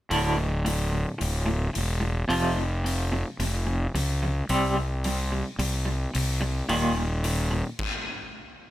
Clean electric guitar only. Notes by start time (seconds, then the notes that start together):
0.10 D2 A2 D3
0.37 D2 A2
0.65 D2 A2
0.91 D2 A2
1.18 D2 A2
1.46 D2 A2
1.73 D2 A2
2.00 D2 A2
2.28 F2 C3 F3
2.56 F2
2.84 F2 C3
3.12 F2 C3
3.40 F2 C3
3.67 F2 C3
3.95 F2 C3
4.23 F2 C3
4.49 C3 G3 C4
4.77 C3
5.05 C3 G3
5.32 C3 G3
5.59 C3 G3
5.85 C3 G3
6.14 C3 G3
6.41 C3 G3
6.69 D#2 A#2 D#3
6.96 D#2 A#2
7.24 D#2 A#2
7.51 D#2 A#2